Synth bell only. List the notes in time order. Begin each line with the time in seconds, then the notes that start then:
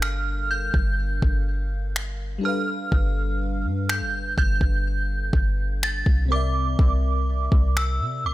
0.02 F6
0.51 G6
2.45 F6
3.90 G6
4.38 G6
5.84 A6
6.32 D6
7.77 E6
8.26 D6